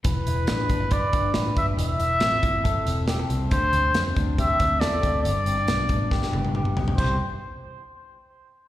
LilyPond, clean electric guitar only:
\new Staff \with { instrumentName = "Clean electric guitar" } { \time 4/4 \key c \major \tempo 4 = 138 e8 e'8 d'8 d'16 e'16 b'8 d'8 b'8 d'8 | e8 e'8 c'8 e'8 a'8 c'8 g'16 a'16 c'8 | d8 c'16 d'16 c'8 d'8 g'16 a'16 c'8 a'8 c'8 | g,8 c'16 d'16 b8 d'8 g'8 b8 g'8 b8 |
<c g b e' g'>8 r2. r8 | }